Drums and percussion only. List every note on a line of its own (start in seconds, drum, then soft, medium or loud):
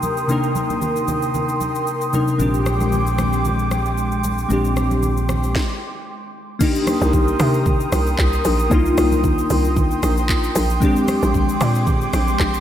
0.03 high conga medium
0.03 shaker medium
0.17 shaker soft
0.29 low conga medium
0.29 shaker medium
0.44 shaker medium
0.55 high conga medium
0.55 shaker medium
0.70 high conga medium
0.70 shaker medium
0.82 low conga medium
0.82 shaker medium
0.96 shaker medium
1.08 high conga medium
1.08 low conga medium
1.08 shaker medium
1.22 shaker medium
1.34 low conga medium
1.34 shaker medium
1.49 shaker soft
1.61 high conga medium
1.61 shaker medium
1.75 shaker soft
1.87 shaker medium
2.01 shaker medium
2.13 high conga medium
2.13 shaker medium
2.28 shaker soft
2.39 low conga medium
2.39 shaker medium
2.54 shaker medium
2.66 cross-stick loud
2.66 high conga medium
2.66 shaker medium
2.80 high conga medium
2.80 shaker medium
2.92 low conga medium
2.92 shaker medium
3.07 shaker medium
3.18 cross-stick medium
3.18 high conga medium
3.18 low conga medium
3.18 shaker medium
3.33 shaker medium
3.45 low conga medium
3.45 shaker medium
3.59 shaker soft
3.71 cross-stick medium
3.71 high conga medium
3.71 shaker medium
3.86 shaker soft
3.98 shaker medium
4.12 shaker medium
4.24 high conga medium
4.24 shaker medium
4.38 shaker soft
4.50 low conga medium
4.50 shaker medium
4.65 shaker medium
4.76 cross-stick medium
4.76 high conga medium
4.76 shaker medium
4.91 high conga medium
4.91 shaker medium
5.03 low conga medium
5.03 shaker medium
5.17 shaker medium
5.29 cross-stick medium
5.29 high conga medium
5.29 low conga medium
5.29 shaker medium
5.43 shaker medium
5.55 kick loud
5.55 snare medium
6.61 kick loud
6.61 crash loud
6.61 low conga medium
6.61 shaker medium
6.75 shaker medium
6.87 cross-stick loud
6.87 open hi-hat medium
6.87 high conga medium
6.87 shaker medium
7.02 high conga medium
7.02 shaker medium
7.13 kick medium
7.13 low conga medium
7.13 shaker medium
7.28 shaker medium
7.40 cross-stick loud
7.40 open hi-hat medium
7.40 low conga medium
7.40 shaker medium
7.54 shaker medium
7.66 kick loud
7.66 low conga medium
7.66 shaker medium
7.80 shaker medium
7.92 cross-stick loud
7.92 open hi-hat medium
7.92 high conga medium
7.92 shaker medium
8.07 shaker medium
8.19 kick medium
8.19 clap loud
8.19 shaker medium
8.33 shaker medium
8.45 open hi-hat medium
8.45 high conga medium
8.45 shaker medium
8.59 shaker medium
8.71 kick loud
8.71 low conga medium
8.71 shaker medium
8.86 shaker medium
8.97 cross-stick loud
8.97 open hi-hat medium
8.97 high conga medium
8.97 shaker medium
9.12 high conga medium
9.12 shaker medium
9.24 kick medium
9.24 low conga medium
9.24 shaker medium
9.38 shaker medium
9.50 open hi-hat medium
9.50 low conga medium
9.50 shaker medium
9.65 shaker medium
9.77 kick loud
9.77 low conga medium
9.77 shaker medium
9.91 shaker medium
10.03 cross-stick loud
10.03 open hi-hat medium
10.03 high conga medium
10.03 shaker medium
10.17 shaker medium
10.29 kick medium
10.29 clap loud
10.29 shaker medium
10.44 shaker medium
10.55 open hi-hat medium
10.55 high conga medium
10.55 shaker loud
10.70 shaker medium
10.82 kick loud
10.82 low conga medium
10.82 shaker medium
10.96 shaker medium
11.08 cross-stick loud
11.08 open hi-hat soft
11.08 high conga medium
11.08 shaker medium
11.23 high conga medium
11.23 shaker medium
11.34 kick medium
11.34 low conga medium
11.34 shaker medium
11.49 shaker medium
11.61 cross-stick loud
11.61 open hi-hat medium
11.61 low conga medium
11.61 shaker medium
11.75 shaker medium
11.87 kick loud
11.87 low conga medium
11.87 shaker medium
12.01 shaker medium
12.13 cross-stick loud
12.13 open hi-hat medium
12.13 high conga medium
12.13 shaker medium
12.28 shaker medium
12.40 kick medium
12.40 clap loud
12.40 shaker medium
12.54 shaker medium